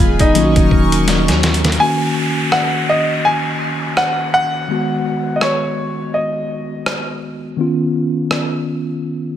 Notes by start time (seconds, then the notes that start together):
Already playing: D#3 F#3 G#3 B3 D#4 F4 G#4 G#5 B5
0.00 D#1
0.19 D#4, kick, closed hi-hat
0.34 A#1 D#3 F#3 A#3 C#4 F4 A#4 C#6, closed hi-hat
0.44 F#4
0.56 D#1, kick, closed hi-hat
0.71 kick
0.92 closed hi-hat
1.08 snare, closed hi-hat
1.28 D#2, snare, closed hi-hat
1.43 snare, closed hi-hat, open hi-hat
1.54 closed hi-hat
1.64 snare, closed hi-hat
1.72 closed hi-hat
1.78 D#3 A#3 C#4 F#4 G#5, downlifter
2.52 F#5, cross-stick
2.89 D#5
3.25 G#5
3.97 F#5, cross-stick
4.34 F#5
4.68 D#3 G#3 B3 F#4
5.36 D#5
5.41 C#5, cross-stick
6.14 D#5
6.86 cross-stick
7.57 D#3 B3 C#4
7.61 F4
8.31 cross-stick